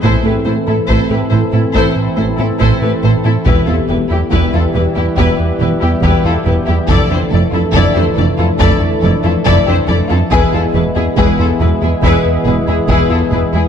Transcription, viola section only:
\new Staff \with { instrumentName = "Viola section" } { \time 4/4 \key d \dorian \tempo 4 = 70 e'16 e'16 e'16 e'16 e'16 e'16 e'16 e'16 e'16 r16 e'16 e'16 e'16 e'16 e'16 e'16 | e'16 e'16 e'16 e'16 e'16 e'16 e'16 e'16 e'16 r16 e'16 e'16 e'16 e'16 e'16 e'16 | e'16 e'16 e'16 e'16 e'16 e'16 e'16 e'16 e'16 r16 e'16 e'16 e'16 e'16 e'16 e'16 | e'16 e'16 e'16 e'16 e'16 e'16 e'16 e'16 e'16 r16 e'16 e'16 e'16 e'16 e'16 e'16 | }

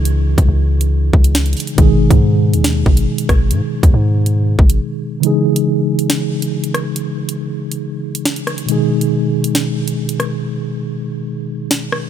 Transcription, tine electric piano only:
\new Staff \with { instrumentName = "Tine electric piano" } { \clef bass \time 4/4 \key cis \minor \tempo 4 = 139 <cis e gis dis' gis'>1 | <b, dis gis dis' gis'>1~ | <b, dis gis dis' gis'>1 | <cis e gis dis' gis'>1~ |
<cis e gis dis' gis'>1 | <b, dis gis dis' gis'>1~ | <b, dis gis dis' gis'>1 | }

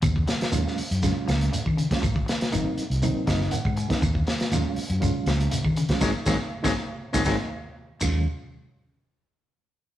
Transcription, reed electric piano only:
<<
  \new Staff \with { instrumentName = "Reed electric piano" } { \time 4/4 \key ees \dorian \tempo 4 = 120 r1 | r2 r8 ees''8 ges''8 aes''8 | r1 | <aes c' ees'>16 r16 <aes c' ees'>16 r8 <aes c' ees'>16 r8. <aes c' ees'>16 <aes c' ees'>16 r4 r16 |
r1 | }
  \new Staff \with { instrumentName = "Reed electric piano" } { \time 4/4 \key ees \dorian r4 <ges aes des' f'>8 r8 <ges aes des' f'>4 r8. <ges aes des' f'>16 | r4 <ges bes c' ees'>8 r8 <ges bes c' ees'>4 r8. <ges bes c' ees'>16 | r4 <ges aes des' f'>8 r8 <ges aes des' f'>4 r8. <ges aes des' f'>16 | r1 |
<ges aes des' f'>8 r2. r8 | }
>>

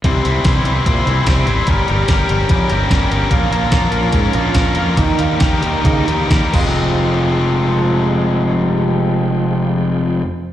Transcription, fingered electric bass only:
\new Staff \with { instrumentName = "Fingered electric bass" } { \clef bass \time 4/4 \key f \minor \tempo 4 = 141 c,8 c,8 c,8 c,8 bes,8 c,8 c,8 aes,,8 | g,,8 g,,8 g,,8 g,,8 f,8 g,,8 g,,8 g,,8 | bes,,8 bes,,8 bes,,8 bes,,8 aes,8 bes,,8 bes,,8 f,8 | ees,8 ees,8 ees,8 ees,8 des8 ees,8 ees,8 f,,8~ |
f,,1~ | f,,1 | }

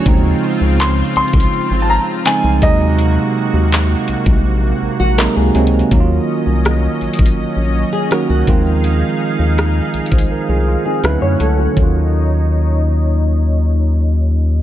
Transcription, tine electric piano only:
<<
  \new Staff \with { instrumentName = "Tine electric piano" } { \time 4/4 \key ees \dorian \tempo 4 = 82 r1 | r2. ees''8 aes''8 | r1 | r4. r16 <aes' c''>16 bes'16 <f' aes'>16 f'16 <c' ees'>8 r8. |
r1 | }
  \new Staff \with { instrumentName = "Tine electric piano" } { \clef bass \time 4/4 \key ees \dorian <des ees f aes c' ees'>2 r4 <des f aes c' ees'>8 <c ges aes bes ees'>8~ | <c ges aes bes ees'>4. r4. <c ges aes bes ees'>8 <c ges aes bes c'>8 | <ees ges bes des' ees' f'>2 r4 <ees ges bes des' ges'>8 <ees f aes c' f'>8~ | <ees f aes c' f'>4. r4. <d fis a cis' fes'>4 |
<ees ges bes des' f'>1 | }
>>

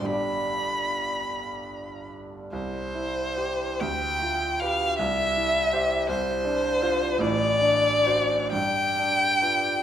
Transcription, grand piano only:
\new Staff \with { instrumentName = "Grand piano" } { \time 6/8 \key g \mixolydian \tempo 4. = 49 <g,, g, d' g' d''>2. | c,8 e'8 <g' c''>8 d,8 f'8 <g' b'>8 | c,8 e'8 <g' c''>8 c,8 d'8 <f' c''>8 | <a,, a,>8 d'8 <fis' c''>8 g,8 d'8 <f' b'>8 | }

